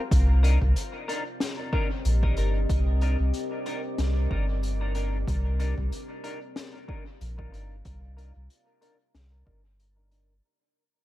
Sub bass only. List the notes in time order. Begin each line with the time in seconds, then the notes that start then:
0.11 C2
0.61 C2
2.05 A#1
2.37 G1
2.70 C2
3.19 C2
3.98 C2
4.31 G1
5.27 C2
5.78 C2
7.21 A#1
7.53 G1
7.85 C2
8.36 C2
9.14 C2
9.47 G1